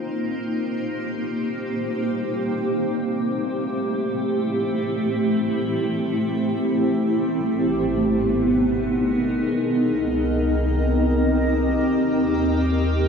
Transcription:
Already playing: A#3 C4 D#4 C5
0.01 G4
2.76 A3
3.26 E4
7.41 G#1 B3
7.57 D#4
8.22 G#4
8.44 A#4 D#5
9.71 C2 C4
10.75 G4
12.02 D#2

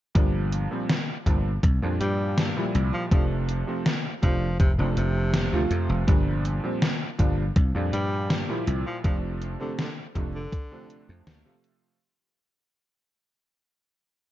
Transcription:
0.15 G1 A#2 F3 G3 D4, kick, closed hi-hat
0.52 closed hi-hat
0.71 A#2 F3 G3 C4
0.89 snare, closed hi-hat
1.26 G1 A#2 F3 G3 D4, kick, closed hi-hat
1.63 C2, kick, closed hi-hat
1.82 F2 A#2 F3 G3 D4
2.01 G2 G3, closed hi-hat
2.38 snare, closed hi-hat
2.56 A#2 F3 G3 E4
2.75 C2, closed hi-hat
2.93 F3
3.11 F1 C3 F3 A3 D4, kick, closed hi-hat
3.49 closed hi-hat
3.67 C3 F3 A3 C4
3.86 snare, closed hi-hat
4.22 F1 C3 F3 A3 D4, kick, closed hi-hat
4.60 F1 C3, kick, closed hi-hat
4.78 F1 C3 F3 A3 D4
4.97 F1 C3, closed hi-hat
5.34 snare, closed hi-hat
5.52 D2 C3 F3 A3 F4
5.71 F2, closed hi-hat
5.89 F1
6.07 G1 A#2 F3 G3 D4, kick, closed hi-hat
6.45 closed hi-hat
6.63 A#2 F3 G3 C4
6.82 snare, closed hi-hat
7.18 G1 A#2 F3 G3 D4, kick, closed hi-hat
7.56 C2, kick, closed hi-hat
7.75 F2 A#2 F3 G3 D4
7.93 G2 G3, closed hi-hat
8.30 snare, closed hi-hat
8.49 A#2 F3 G3 E4
8.67 C2, closed hi-hat
8.87 F3
9.04 F1 C3 F3 A3 D4, kick, closed hi-hat
9.42 closed hi-hat
9.60 C3 D3 F3 A3 C4
9.79 D3, snare, closed hi-hat
10.15 F1 C3 F3 A3 D4, kick, closed hi-hat
10.35 D3
10.52 kick, closed hi-hat
10.71 C3 F3 A3 D4
10.90 closed hi-hat
11.09 F2
11.27 D2, snare, closed hi-hat
11.45 C3 F3 A3 F4
11.64 closed hi-hat

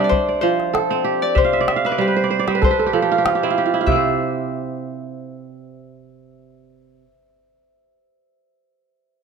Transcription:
Already playing: C3 G3 C4 D4 G4 E5
0.04 D5
0.09 C5, calabash thump
0.29 D5
0.41 F3 C5
0.60 calabash click
0.74 A4, calabash click
0.91 C4, calabash click
1.04 G4
1.22 D5
1.35 C3 C5 E5, calabash thump
1.44 F5
1.53 E5
1.61 D5
1.68 E5, calabash click
1.76 F5
1.85 B4 E5, calabash click
1.92 D5
1.98 G3 G4 C5
2.08 B4
2.16 C5
2.24 D5
2.30 C5
2.39 D5
2.47 G3 C5, calabash click
2.55 B4
2.62 A4 C5, calabash thump
2.71 B4
2.79 A4
2.86 G4
2.93 F3 A4, calabash click
3.02 G4
3.12 F4
3.18 G4
3.26 F4, calabash click
3.35 G4
3.43 C4 E4
3.50 F4
3.58 G4
3.66 F4
3.74 E4
3.81 F4
3.86 C3 E5, calabash thump
3.92 C4
3.96 C5

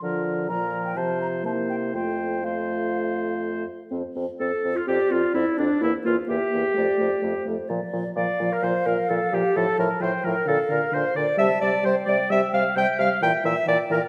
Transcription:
0.02 D3 F3 F4 A#4
0.49 A#2 F3 F4 A#4 A#5
0.85 G5
0.96 C3 F3 F4 C5 A5
1.21 A#5
1.44 C3 A#3 E4 C5 A5
1.70 G5
1.94 F2 A3 F4 C5 G5
2.44 A3 F4 C5 F5
3.91 F2 C4
4.16 F2 C4
4.40 F2 C4 A4
4.63 F2 C4
4.76 F4
4.87 F2 C4 G4 D5
5.10 F2 C4 F4
5.34 F2 C4 E4
5.58 F2 C4 D4
5.81 E2 A#3 E4 C5
6.05 E2 A#3 F4
6.27 E2 A#3 G4 E5
6.51 E2 A#3
6.74 F2 A3 D5
6.97 F2 A3
7.22 F2 A3 C5
7.45 F2 A3
7.69 A#2 F3 D5
7.93 A#2 F3
8.15 A#2 F3 D5 F5
8.39 A#2 F3
8.52 A#4
8.62 A#2 F3 C5
8.86 A#2 F3 A#4
9.09 A#2 F3 A4
9.33 A#2 F3 G4
9.56 A2 F3 A4 A5
9.78 A2 F3 A#4
10.00 A2 F3 C5 G5
10.24 A2 F3 A#4
10.45 A#2 D3 A4 F5
10.69 A#2 D3 A#4
10.91 A#2 D3 C5
11.14 A#2 D3 D5
11.37 C3 G3 E5 A5
11.60 C3 G3 D5
11.83 C3 G3 C5 G5
12.05 C3 G3 D5
12.30 C3 G3 E5
12.53 C3 G3 F5
12.76 C3 G3 E5 G5
12.99 C3 G3 F5
13.21 A#2 E3 E5 G5
13.44 A#2 E3 E5
13.66 A#2 E3 D5 G5
13.90 A#2 E3 A#4

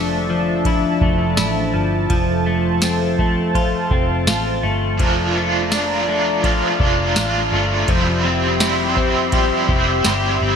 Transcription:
Already playing: F1 F3 A3 D4 E5 A5
0.30 F3
0.65 E4, kick, ride
1.01 F1 A3, kick
1.37 A1 E4, snare, ride, tambourine
1.74 G1 F3
2.10 F1 F3 A4 C5, kick, ride
2.46 A3
2.82 C4, snare, ride, tambourine
3.19 A3, kick
3.55 F4, kick, ride
3.91 F1 C4, kick
4.27 A1 F4, snare, ride, tambourine
4.63 G1 A3
4.98 F1 F3 D4 F4 A#4 D5 A#5, kick, ride
5.35 A3 D4 F4
5.71 D4 F4, snare, ride, tambourine
6.08 A3 D4 F4
6.42 F3 D4 F4, kick, ride
6.80 F1 D4 F4, kick
7.16 A1 D4 F4, snare, ride, tambourine
7.52 G1 A3 D4 F4
7.87 F1 F3 G3 C4 E4 G4 C5 E5 C6, kick, ride
8.22 C4 E4 C5
8.28 C4
8.58 G3 C4 E4, snare, ride, tambourine
8.63 E4 C5
8.95 C4 E4 C5, kick
9.01 C4
9.31 F3 G3 C4 E4 G4, kick, ride
9.35 C5
9.68 F1 E4 C5, kick
9.73 C4
10.03 G1 G3 C4 E4 G4, snare, ride, tambourine
10.09 C5
10.39 G1 C4 E4 C5
10.45 C4

